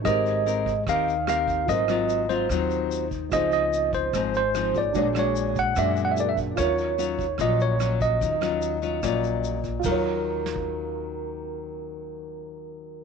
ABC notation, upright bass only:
X:1
M:4/4
L:1/8
Q:1/4=147
K:Ebm
V:1 name="Upright bass" clef=bass
A,,,4 E,,4 | A,,,4 E,,4 | D,,4 A,,,4 | B,,,4 ^F,,4 |
E,,4 B,,,4 | E,,4 B,,,4 | E,,8- | E,,8 |]